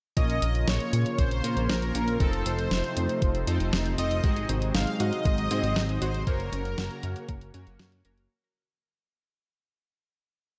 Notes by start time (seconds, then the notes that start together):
0.17 A#1 C#3 F3 A#3 C#4 F4 A#4 C#5 D#5, kick, closed hi-hat
0.30 closed hi-hat
0.42 A#1, closed hi-hat
0.55 closed hi-hat
0.68 A#1 C#5, snare, closed hi-hat
0.80 closed hi-hat
0.93 A#2, closed hi-hat
1.06 closed hi-hat
1.18 A#1 C5, kick, closed hi-hat
1.31 closed hi-hat
1.44 A#2 A#3 C#4 F4 A#4 C#5, closed hi-hat
1.57 A#1, closed hi-hat
1.69 A#1 A#4, snare, closed hi-hat
1.82 closed hi-hat
1.95 A#1 A#3 C#4 F4 A#4 C#5, closed hi-hat
2.08 closed hi-hat
2.20 F1 C3 A3 C4 D#4 F4 A4 C5, kick, closed hi-hat
2.33 closed hi-hat
2.46 F1 C5, closed hi-hat
2.59 closed hi-hat
2.71 F1, snare, closed hi-hat
2.84 closed hi-hat
2.97 F2, closed hi-hat
3.09 closed hi-hat
3.22 F1, kick, closed hi-hat
3.35 closed hi-hat
3.47 F2 C4 D#4 F4 A4 C5, closed hi-hat
3.60 F1, closed hi-hat
3.73 F1, snare, closed hi-hat
3.86 closed hi-hat
3.98 F1 C4 D#4 F4 A4 C5 D#5, closed hi-hat
4.11 closed hi-hat
4.24 G#1 F#3 G#3 C4 D#4 F#4 G#4 C5, kick, closed hi-hat
4.36 closed hi-hat
4.49 G#1 C4, closed hi-hat
4.62 closed hi-hat
4.74 G#1 D#4 F5, snare, closed hi-hat
4.87 closed hi-hat
5.00 G#2 F#4 D#5, closed hi-hat
5.13 closed hi-hat
5.25 G#1 G#3, kick, closed hi-hat
5.38 closed hi-hat
5.51 G#2 C4 D#4 F#4 G#4 C5, closed hi-hat
5.63 G#1, closed hi-hat
5.76 G#1 D#4, snare, closed hi-hat
5.89 closed hi-hat
6.01 G#1 C4 D#4 F#4 G#4 C5, closed hi-hat
6.14 closed hi-hat
6.27 F#1 C#3 A#3 C#4 F#4 A#4 C#5, kick, closed hi-hat
6.40 closed hi-hat
6.52 F#1 C#4, closed hi-hat
6.65 closed hi-hat
6.78 F#1 F#4, snare, closed hi-hat
6.91 closed hi-hat
7.03 F#2 A#4, closed hi-hat
7.16 closed hi-hat
7.29 F#1 A#3, kick, closed hi-hat
7.41 closed hi-hat
7.54 F#2 A#3 C#4 F#4 A#4 C#5, closed hi-hat
7.67 F#1, closed hi-hat
7.79 F#2 F#4, snare, closed hi-hat
7.92 closed hi-hat
8.05 F#1 A#3 C#4 F#4 A#4 C#5, closed hi-hat
8.18 closed hi-hat